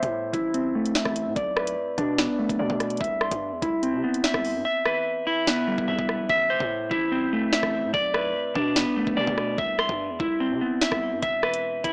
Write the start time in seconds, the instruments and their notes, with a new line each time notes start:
Already playing: clean electric guitar C5 E5
0.03 808-style bass A2, kick, closed hi-hat
0.33 808-style bass A1, clean electric guitar E4, kick, closed hi-hat
0.54 clean electric guitar C4, closed hi-hat
0.75 clean electric guitar A3
0.85 closed hi-hat
0.95 clean electric guitar E5, snare
1.05 808-style bass A1, kick, cross-stick
1.16 closed hi-hat
1.26 808-style bass A2
1.36 808-style bass B1, clean electric guitar D5, kick, closed hi-hat
1.56 clean electric guitar B4, cross-stick
1.67 closed hi-hat
1.98 808-style bass B2, clean electric guitar D4, kick, closed hi-hat
2.18 clean electric guitar B3, snare, closed hi-hat
2.39 clean electric guitar A3
2.49 808-style bass B1, kick, closed hi-hat
2.59 808-style bass B2, clean electric guitar D5
2.70 808-style bass B2, kick
2.80 cross-stick, closed hi-hat
2.90 closed hi-hat
2.97 808-style bass C2, clean electric guitar E5, kick, closed hi-hat
3.04 closed hi-hat
3.21 clean electric guitar C6, cross-stick
3.31 808-style bass G2, kick, closed hi-hat
3.52 808-style bass E2
3.62 808-style bass C2, clean electric guitar E4, kick, closed hi-hat
3.83 clean electric guitar C4, closed hi-hat
3.93 808-style bass C3
4.04 clean electric guitar B3
4.14 closed hi-hat
4.24 clean electric guitar E5, snare
4.34 808-style bass C2, kick, cross-stick
4.45 open hi-hat
4.55 808-style bass G2
4.65 clean electric guitar E5
4.86 clean electric guitar B4, cross-stick
5.27 clean electric guitar E4
5.47 808-style bass G1, clean electric guitar B3, snare
5.68 clean electric guitar G3
5.78 808-style bass E1, kick
5.88 808-style bass E2, clean electric guitar E5
5.99 808-style bass E1, kick
6.09 cross-stick
6.19 808-style bass B1
6.29 808-style bass A1, clean electric guitar E5, kick
6.50 808-style bass G1, clean electric guitar C5
6.60 808-style bass A2, kick
6.91 808-style bass A1, clean electric guitar E4, kick
7.12 clean electric guitar C4
7.33 clean electric guitar A3
7.53 clean electric guitar E5, snare
7.63 808-style bass A1, kick, cross-stick
7.84 808-style bass A2
7.94 808-style bass B1, clean electric guitar D5, kick
8.14 clean electric guitar B4, cross-stick
8.55 808-style bass B2, clean electric guitar D4, kick
8.76 clean electric guitar B3, snare
8.97 clean electric guitar A3
9.07 808-style bass B1, kick
9.17 808-style bass B2, clean electric guitar D5
9.27 808-style bass B2, kick
9.38 cross-stick
9.58 808-style bass C2, clean electric guitar E5, kick
9.79 clean electric guitar C6, cross-stick
9.89 808-style bass G2, kick
10.10 808-style bass E2
10.20 808-style bass C2, clean electric guitar E4, kick
10.40 clean electric guitar C4
10.51 808-style bass C3
10.61 clean electric guitar B3
10.81 clean electric guitar E5, snare
10.92 808-style bass C2, kick, cross-stick
11.12 808-style bass G2
11.22 808-style bass E1, clean electric guitar E5, kick, closed hi-hat
11.43 clean electric guitar B4, cross-stick
11.54 closed hi-hat
11.84 808-style bass E1, clean electric guitar E4, kick, closed hi-hat